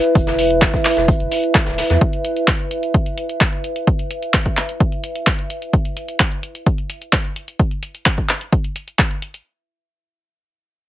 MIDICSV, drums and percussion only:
0, 0, Header, 1, 2, 480
1, 0, Start_track
1, 0, Tempo, 465116
1, 158, Time_signature, 4, 2, 24, 8
1, 11237, End_track
2, 0, Start_track
2, 0, Title_t, "Drums"
2, 40, Note_on_c, 9, 42, 51
2, 143, Note_off_c, 9, 42, 0
2, 158, Note_on_c, 9, 36, 116
2, 158, Note_on_c, 9, 42, 47
2, 164, Note_off_c, 9, 42, 0
2, 164, Note_on_c, 9, 42, 89
2, 261, Note_off_c, 9, 36, 0
2, 267, Note_off_c, 9, 42, 0
2, 279, Note_on_c, 9, 38, 46
2, 280, Note_on_c, 9, 42, 23
2, 382, Note_off_c, 9, 38, 0
2, 383, Note_off_c, 9, 42, 0
2, 398, Note_on_c, 9, 46, 107
2, 401, Note_on_c, 9, 42, 61
2, 501, Note_off_c, 9, 46, 0
2, 504, Note_off_c, 9, 42, 0
2, 520, Note_on_c, 9, 42, 46
2, 624, Note_off_c, 9, 42, 0
2, 634, Note_on_c, 9, 38, 110
2, 637, Note_on_c, 9, 39, 108
2, 638, Note_on_c, 9, 36, 117
2, 638, Note_on_c, 9, 42, 47
2, 641, Note_off_c, 9, 42, 0
2, 641, Note_on_c, 9, 42, 75
2, 738, Note_off_c, 9, 38, 0
2, 740, Note_off_c, 9, 39, 0
2, 741, Note_off_c, 9, 36, 0
2, 744, Note_off_c, 9, 42, 0
2, 760, Note_on_c, 9, 36, 61
2, 760, Note_on_c, 9, 42, 24
2, 763, Note_on_c, 9, 38, 40
2, 863, Note_off_c, 9, 36, 0
2, 863, Note_off_c, 9, 42, 0
2, 866, Note_off_c, 9, 38, 0
2, 877, Note_on_c, 9, 39, 57
2, 878, Note_on_c, 9, 46, 91
2, 879, Note_on_c, 9, 42, 64
2, 880, Note_on_c, 9, 38, 36
2, 981, Note_off_c, 9, 39, 0
2, 981, Note_off_c, 9, 46, 0
2, 982, Note_off_c, 9, 42, 0
2, 984, Note_off_c, 9, 38, 0
2, 999, Note_on_c, 9, 38, 48
2, 1000, Note_on_c, 9, 42, 46
2, 1103, Note_off_c, 9, 38, 0
2, 1103, Note_off_c, 9, 42, 0
2, 1118, Note_on_c, 9, 36, 112
2, 1118, Note_on_c, 9, 42, 46
2, 1122, Note_off_c, 9, 42, 0
2, 1122, Note_on_c, 9, 42, 84
2, 1221, Note_off_c, 9, 36, 0
2, 1225, Note_off_c, 9, 42, 0
2, 1240, Note_on_c, 9, 42, 23
2, 1344, Note_off_c, 9, 42, 0
2, 1355, Note_on_c, 9, 42, 67
2, 1358, Note_on_c, 9, 46, 98
2, 1458, Note_off_c, 9, 42, 0
2, 1461, Note_off_c, 9, 46, 0
2, 1480, Note_on_c, 9, 42, 45
2, 1584, Note_off_c, 9, 42, 0
2, 1595, Note_on_c, 9, 38, 118
2, 1597, Note_on_c, 9, 39, 106
2, 1598, Note_on_c, 9, 36, 114
2, 1598, Note_on_c, 9, 42, 46
2, 1604, Note_off_c, 9, 42, 0
2, 1604, Note_on_c, 9, 42, 80
2, 1698, Note_off_c, 9, 38, 0
2, 1701, Note_off_c, 9, 36, 0
2, 1701, Note_off_c, 9, 39, 0
2, 1707, Note_off_c, 9, 42, 0
2, 1715, Note_on_c, 9, 38, 48
2, 1720, Note_on_c, 9, 42, 23
2, 1818, Note_off_c, 9, 38, 0
2, 1823, Note_off_c, 9, 42, 0
2, 1836, Note_on_c, 9, 42, 60
2, 1838, Note_on_c, 9, 46, 88
2, 1840, Note_on_c, 9, 38, 51
2, 1939, Note_off_c, 9, 42, 0
2, 1941, Note_off_c, 9, 46, 0
2, 1943, Note_off_c, 9, 38, 0
2, 1960, Note_on_c, 9, 38, 52
2, 1960, Note_on_c, 9, 42, 47
2, 2063, Note_off_c, 9, 38, 0
2, 2063, Note_off_c, 9, 42, 0
2, 2078, Note_on_c, 9, 36, 110
2, 2078, Note_on_c, 9, 42, 45
2, 2181, Note_off_c, 9, 36, 0
2, 2181, Note_off_c, 9, 42, 0
2, 2200, Note_on_c, 9, 42, 23
2, 2303, Note_off_c, 9, 42, 0
2, 2318, Note_on_c, 9, 42, 82
2, 2421, Note_off_c, 9, 42, 0
2, 2440, Note_on_c, 9, 42, 46
2, 2543, Note_off_c, 9, 42, 0
2, 2557, Note_on_c, 9, 39, 104
2, 2558, Note_on_c, 9, 36, 109
2, 2558, Note_on_c, 9, 42, 46
2, 2660, Note_off_c, 9, 39, 0
2, 2661, Note_off_c, 9, 36, 0
2, 2661, Note_off_c, 9, 42, 0
2, 2680, Note_on_c, 9, 42, 24
2, 2783, Note_off_c, 9, 42, 0
2, 2798, Note_on_c, 9, 42, 83
2, 2901, Note_off_c, 9, 42, 0
2, 2920, Note_on_c, 9, 42, 47
2, 3023, Note_off_c, 9, 42, 0
2, 3038, Note_on_c, 9, 36, 106
2, 3038, Note_on_c, 9, 42, 47
2, 3141, Note_off_c, 9, 36, 0
2, 3141, Note_off_c, 9, 42, 0
2, 3160, Note_on_c, 9, 42, 24
2, 3263, Note_off_c, 9, 42, 0
2, 3277, Note_on_c, 9, 42, 79
2, 3381, Note_off_c, 9, 42, 0
2, 3400, Note_on_c, 9, 42, 46
2, 3503, Note_off_c, 9, 42, 0
2, 3517, Note_on_c, 9, 39, 104
2, 3517, Note_on_c, 9, 42, 46
2, 3518, Note_on_c, 9, 36, 108
2, 3620, Note_off_c, 9, 39, 0
2, 3621, Note_off_c, 9, 36, 0
2, 3621, Note_off_c, 9, 42, 0
2, 3640, Note_on_c, 9, 42, 22
2, 3743, Note_off_c, 9, 42, 0
2, 3758, Note_on_c, 9, 42, 83
2, 3861, Note_off_c, 9, 42, 0
2, 3880, Note_on_c, 9, 42, 47
2, 3983, Note_off_c, 9, 42, 0
2, 3998, Note_on_c, 9, 36, 104
2, 3998, Note_on_c, 9, 42, 47
2, 4101, Note_off_c, 9, 36, 0
2, 4101, Note_off_c, 9, 42, 0
2, 4120, Note_on_c, 9, 42, 24
2, 4223, Note_off_c, 9, 42, 0
2, 4238, Note_on_c, 9, 42, 85
2, 4341, Note_off_c, 9, 42, 0
2, 4360, Note_on_c, 9, 42, 46
2, 4463, Note_off_c, 9, 42, 0
2, 4477, Note_on_c, 9, 39, 101
2, 4478, Note_on_c, 9, 36, 105
2, 4478, Note_on_c, 9, 42, 47
2, 4580, Note_off_c, 9, 39, 0
2, 4581, Note_off_c, 9, 36, 0
2, 4581, Note_off_c, 9, 42, 0
2, 4600, Note_on_c, 9, 36, 55
2, 4600, Note_on_c, 9, 42, 25
2, 4703, Note_off_c, 9, 36, 0
2, 4703, Note_off_c, 9, 42, 0
2, 4717, Note_on_c, 9, 39, 54
2, 4718, Note_on_c, 9, 42, 88
2, 4820, Note_off_c, 9, 39, 0
2, 4821, Note_off_c, 9, 42, 0
2, 4840, Note_on_c, 9, 42, 49
2, 4943, Note_off_c, 9, 42, 0
2, 4958, Note_on_c, 9, 36, 105
2, 4958, Note_on_c, 9, 42, 49
2, 5061, Note_off_c, 9, 36, 0
2, 5061, Note_off_c, 9, 42, 0
2, 5080, Note_on_c, 9, 42, 24
2, 5183, Note_off_c, 9, 42, 0
2, 5198, Note_on_c, 9, 42, 82
2, 5301, Note_off_c, 9, 42, 0
2, 5320, Note_on_c, 9, 42, 47
2, 5423, Note_off_c, 9, 42, 0
2, 5437, Note_on_c, 9, 39, 99
2, 5438, Note_on_c, 9, 36, 104
2, 5438, Note_on_c, 9, 42, 46
2, 5540, Note_off_c, 9, 39, 0
2, 5541, Note_off_c, 9, 36, 0
2, 5541, Note_off_c, 9, 42, 0
2, 5560, Note_on_c, 9, 42, 23
2, 5663, Note_off_c, 9, 42, 0
2, 5678, Note_on_c, 9, 42, 83
2, 5781, Note_off_c, 9, 42, 0
2, 5800, Note_on_c, 9, 42, 49
2, 5903, Note_off_c, 9, 42, 0
2, 5917, Note_on_c, 9, 42, 49
2, 5918, Note_on_c, 9, 36, 101
2, 6020, Note_off_c, 9, 42, 0
2, 6021, Note_off_c, 9, 36, 0
2, 6039, Note_on_c, 9, 42, 23
2, 6142, Note_off_c, 9, 42, 0
2, 6157, Note_on_c, 9, 42, 85
2, 6261, Note_off_c, 9, 42, 0
2, 6279, Note_on_c, 9, 42, 48
2, 6382, Note_off_c, 9, 42, 0
2, 6397, Note_on_c, 9, 39, 105
2, 6398, Note_on_c, 9, 36, 103
2, 6398, Note_on_c, 9, 42, 49
2, 6500, Note_off_c, 9, 39, 0
2, 6501, Note_off_c, 9, 36, 0
2, 6501, Note_off_c, 9, 42, 0
2, 6520, Note_on_c, 9, 42, 25
2, 6623, Note_off_c, 9, 42, 0
2, 6638, Note_on_c, 9, 42, 88
2, 6741, Note_off_c, 9, 42, 0
2, 6760, Note_on_c, 9, 42, 47
2, 6863, Note_off_c, 9, 42, 0
2, 6878, Note_on_c, 9, 36, 100
2, 6878, Note_on_c, 9, 42, 48
2, 6981, Note_off_c, 9, 36, 0
2, 6981, Note_off_c, 9, 42, 0
2, 7000, Note_on_c, 9, 42, 25
2, 7103, Note_off_c, 9, 42, 0
2, 7117, Note_on_c, 9, 42, 85
2, 7220, Note_off_c, 9, 42, 0
2, 7240, Note_on_c, 9, 42, 48
2, 7343, Note_off_c, 9, 42, 0
2, 7357, Note_on_c, 9, 39, 105
2, 7357, Note_on_c, 9, 42, 49
2, 7358, Note_on_c, 9, 36, 99
2, 7460, Note_off_c, 9, 39, 0
2, 7461, Note_off_c, 9, 36, 0
2, 7461, Note_off_c, 9, 42, 0
2, 7480, Note_on_c, 9, 42, 24
2, 7583, Note_off_c, 9, 42, 0
2, 7597, Note_on_c, 9, 42, 84
2, 7701, Note_off_c, 9, 42, 0
2, 7720, Note_on_c, 9, 42, 50
2, 7823, Note_off_c, 9, 42, 0
2, 7837, Note_on_c, 9, 42, 49
2, 7838, Note_on_c, 9, 36, 101
2, 7941, Note_off_c, 9, 36, 0
2, 7941, Note_off_c, 9, 42, 0
2, 7960, Note_on_c, 9, 42, 25
2, 8063, Note_off_c, 9, 42, 0
2, 8077, Note_on_c, 9, 42, 86
2, 8181, Note_off_c, 9, 42, 0
2, 8200, Note_on_c, 9, 42, 48
2, 8303, Note_off_c, 9, 42, 0
2, 8317, Note_on_c, 9, 39, 102
2, 8318, Note_on_c, 9, 36, 100
2, 8318, Note_on_c, 9, 42, 48
2, 8420, Note_off_c, 9, 39, 0
2, 8421, Note_off_c, 9, 36, 0
2, 8421, Note_off_c, 9, 42, 0
2, 8440, Note_on_c, 9, 36, 52
2, 8440, Note_on_c, 9, 42, 24
2, 8543, Note_off_c, 9, 36, 0
2, 8543, Note_off_c, 9, 42, 0
2, 8557, Note_on_c, 9, 39, 57
2, 8558, Note_on_c, 9, 42, 90
2, 8660, Note_off_c, 9, 39, 0
2, 8661, Note_off_c, 9, 42, 0
2, 8680, Note_on_c, 9, 42, 50
2, 8783, Note_off_c, 9, 42, 0
2, 8798, Note_on_c, 9, 36, 99
2, 8798, Note_on_c, 9, 42, 50
2, 8901, Note_off_c, 9, 36, 0
2, 8902, Note_off_c, 9, 42, 0
2, 8921, Note_on_c, 9, 42, 26
2, 9024, Note_off_c, 9, 42, 0
2, 9038, Note_on_c, 9, 42, 88
2, 9141, Note_off_c, 9, 42, 0
2, 9160, Note_on_c, 9, 42, 47
2, 9263, Note_off_c, 9, 42, 0
2, 9277, Note_on_c, 9, 39, 111
2, 9278, Note_on_c, 9, 36, 102
2, 9278, Note_on_c, 9, 42, 50
2, 9380, Note_off_c, 9, 39, 0
2, 9381, Note_off_c, 9, 36, 0
2, 9381, Note_off_c, 9, 42, 0
2, 9400, Note_on_c, 9, 42, 24
2, 9503, Note_off_c, 9, 42, 0
2, 9518, Note_on_c, 9, 42, 84
2, 9621, Note_off_c, 9, 42, 0
2, 9640, Note_on_c, 9, 42, 50
2, 9743, Note_off_c, 9, 42, 0
2, 11237, End_track
0, 0, End_of_file